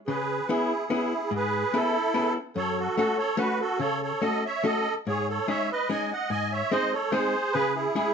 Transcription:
0.07 hollow-body jazz guitar C#3, accordion G#4 B4
0.49 hollow-body jazz guitar B3 C#4 E4 G#4, accordion E4 G#4
0.90 hollow-body jazz guitar B3 C#4 E4 G#4, accordion E4 G#4
1.31 hollow-body jazz guitar G#2, accordion G#4
1.36 accordion B4
1.74 hollow-body jazz guitar B3 C#4 E4 G#4, accordion E4 A4
2.14 hollow-body jazz guitar B3 C#4 E4 G#4
2.56 hollow-body jazz guitar F#2, accordion A4 C#5
2.78 accordion F#4 A4
2.97 hollow-body jazz guitar A3 C#4 F#4 A4, accordion F#4 A4
3.18 accordion A4 C#5
3.37 hollow-body jazz guitar A3 C#4 F#4 A4, accordion F#4 B4
3.60 accordion F#4 A4
3.79 hollow-body jazz guitar C#3, accordion A4 C#5
4.02 accordion A4 C#5
4.21 hollow-body jazz guitar A3 C#4 F#4 A4, accordion A4 D#5
4.46 accordion C#5 E5
4.64 hollow-body jazz guitar A3 C#4 F#4 A4, accordion A4 D#5
5.07 hollow-body jazz guitar G#2, accordion G#4 C#5
5.29 accordion A4 C#5
5.48 hollow-body jazz guitar G#3 C#4 D#4 G#4, accordion C#5 E5
5.72 accordion B4 D#5
5.90 hollow-body jazz guitar G#3 C#4 D#4 G#4, accordion D#5 G#5
6.12 accordion D#5 F#5
6.30 hollow-body jazz guitar G#2, accordion D#5 G#5
6.52 accordion C#5 E5
6.71 hollow-body jazz guitar G#3 C4 D#4 G#4, accordion C5 D#5
6.93 accordion A4 C#5
7.11 hollow-body jazz guitar G#3 C4 D#4 G#4, accordion G#4 C5
7.52 hollow-body jazz guitar C#3, accordion G#4 B4
7.75 accordion E4 G#4
7.95 hollow-body jazz guitar G#3 C#4 E4 G#4, accordion E4 G#4

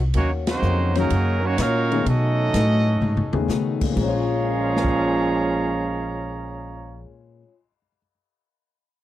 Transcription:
Already playing: upright bass C2
0.14 upright bass D#2, steel-string acoustic guitar D#3 A#3 C#4 F#4, trombone section F#3 A#3 C#4, trumpet section A#3 D#4 F#4 C#5, kick, ride
0.47 trombone section C#3 F#3 C4, trumpet section A#3 D#4 F#4 C5, snare, ride
0.62 upright bass F2, steel-string acoustic guitar D#3 A#3 C#4 F#4, hi-hat pedal
0.94 trombone section C#3 F#3 A#3, grand piano D#3 F#3 A#3 C#4 F#4, trumpet section F#3 C#4 D#4 A#4, snare, ride
1.10 upright bass F#2, steel-string acoustic guitar D#3 A#3 C#4 F#4, kick, ride
1.42 trombone section F#3 A#3 C#4, trumpet section F#4 C#5
1.46 trumpet section A#3 D#4
1.58 upright bass A#2, steel-string acoustic guitar D#3 A#3 C#4 F#4, trombone section A#3 C#4 F4, trumpet section D#4 A#4 C#5 F5, kick, snare, hi-hat pedal, ride
1.91 grand piano D#3 A3 B3 C#4 G#4, ride
2.05 steel-string acoustic guitar B2 A3 D#4 G#4, upright bass B2, trombone section F#3 A3 D#4, trumpet section C#4 F#4 A4 D#5, kick, ride
2.53 upright bass A2, steel-string acoustic guitar B2 A3 D#4 G#4, kick, snare, hi-hat pedal, ride
3.01 upright bass G#2, steel-string acoustic guitar B2 A3 D#4 G#4, high tom
3.16 upright bass F#2, high tom
3.33 upright bass D#2, grand piano D#3 A3 B3 C#4 G#4, high tom
3.48 steel-string acoustic guitar B2 A3 D#4 G#4, upright bass C#3, snare, hi-hat pedal
3.81 grand piano A#2, kick, crash
3.91 steel-string acoustic guitar A#2, grand piano F3
3.95 upright bass A#1, trombone section A#2 F3 G#3 C#4, grand piano G#3, steel-string acoustic guitar G#3, trumpet section G#4 C#5 F5 A#5, kick, crash
4.03 steel-string acoustic guitar C#4, grand piano C#4
4.07 steel-string acoustic guitar F4, grand piano C#5
4.45 grand piano D#5
4.52 grand piano G#5
4.61 grand piano C6
4.69 grand piano D#6
4.77 grand piano G#6, snare
4.84 kick
4.90 grand piano C7
5.02 grand piano D#7

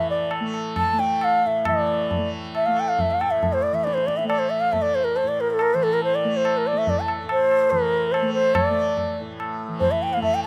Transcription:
Already playing: tanpura A2 E3 A3
0.10 bansuri D5
0.31 tabla na
0.41 tanpura A3
0.54 tabla na
0.76 bansuri A5, tabla na, tabla ge
0.93 tanpura A3
0.99 bansuri G5, tabla te
1.21 bansuri F5, tabla na
1.46 tanpura A2, bansuri E5
1.65 tanpura E3, bansuri D5, tabla na, tabla ge
2.11 tabla tin, tabla ge
2.18 tanpura A3
2.55 bansuri E5, tabla na
2.66 tanpura A3, bansuri F5
2.77 bansuri G5, tabla na
2.88 bansuri F5
2.99 bansuri E5, tabla tin, tabla ge
3.11 bansuri F5
3.21 tanpura A2, bansuri G5, tabla na
3.31 bansuri E5
3.43 tabla tin, tabla ge
3.53 bansuri C5
3.63 bansuri D5
3.71 tanpura E3, bansuri E5
3.84 bansuri D5, tabla te
3.94 bansuri C5, tabla te
4.07 bansuri D5, tabla ke
4.17 bansuri E5, tabla te
4.24 tanpura A3, bansuri D5
4.30 tabla na
4.39 bansuri C5
4.50 bansuri E5
4.61 bansuri F5
4.72 tanpura A3, bansuri E5, tabla tin, tabla ge
4.82 bansuri D5
4.95 bansuri C5
5.04 bansuri A#4
5.16 bansuri C5, tabla tin
5.24 tanpura A2
5.28 bansuri D5
5.40 bansuri A#4
5.51 bansuri A4
5.59 bansuri A#4, tabla na
5.74 tanpura E3, bansuri C5
5.83 bansuri A4
5.93 bansuri A#4
6.02 bansuri C5, tabla tin
6.15 bansuri D5
6.25 tanpura A3
6.36 bansuri C5
6.45 tabla na
6.57 bansuri A#4
6.67 bansuri D5
6.73 tanpura A3
6.78 bansuri E5
6.87 bansuri D5, tabla tin, tabla ge
7.00 bansuri A5
7.08 tabla na
7.24 tanpura A2
7.29 bansuri C5, tabla na
7.51 tabla na
7.70 tanpura E3, bansuri A#4, tabla tin, tabla ge
8.12 bansuri C5, tabla na
8.22 tanpura A3
8.33 bansuri C5
8.54 bansuri D5, tabla na, tabla ge
8.70 tanpura A3
8.97 tabla tin, tabla ge
9.20 tanpura A2
9.40 tabla na
9.68 tanpura E3
9.80 bansuri C5, tabla tin, tabla ge
9.91 bansuri E5
10.02 bansuri G5
10.13 tanpura A3, bansuri F5
10.22 bansuri E5, tabla tin, tabla ge
10.35 bansuri G5
10.44 bansuri A5

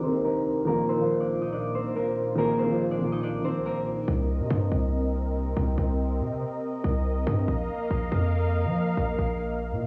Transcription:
Already playing: analog synth pad C3 C4 D#4 A#4, grand piano A#3 C4 D#4 G4, harp A#3 D4 A#4 D5
0.00 grand piano D#3 A#3 C4, harp C5
0.04 harp C4, grand piano A#4
0.25 harp A#3 A#4
0.65 analog synth pad A#2 A#3 F4, grand piano D#3 F3 A#3, harp A#3 A#4
0.70 grand piano F4
0.89 harp C4 C5
0.97 grand piano D#3 F3 A#3
1.02 grand piano F4
1.20 harp D4 D5
1.42 harp D#4 D#5
1.52 harp D4 D5
1.75 harp C4 C5
1.96 harp A#3 A#4
2.35 grand piano D#3 F3 A#3, harp A#3 A#4
2.40 grand piano G#4
2.59 harp C4 C5
2.66 grand piano D#3 F3 A#3
2.71 grand piano F4
2.91 harp D4 D5
2.99 grand piano D#3 F3 A#3
3.04 grand piano F4
3.12 harp D#4 D#5
3.23 harp D4 D5
3.42 grand piano D#3 F3 A#3, harp C4 C5
3.46 grand piano F4
3.65 harp A#3 A#4
4.08 808-style bass C2, analog synth pad C3 C4 A#4 D#5
4.40 808-style bass C3
4.50 808-style bass G2
4.72 808-style bass C2
5.57 808-style bass C2
5.78 808-style bass C2
6.21 808-style bass C3
6.84 808-style bass C2
7.27 808-style bass G2
7.48 808-style bass A#1, analog synth pad A#3 F5
7.91 808-style bass A#1
8.12 808-style bass F2
8.65 808-style bass F3
8.97 808-style bass A#1
9.18 808-style bass A#1
9.72 808-style bass A#2

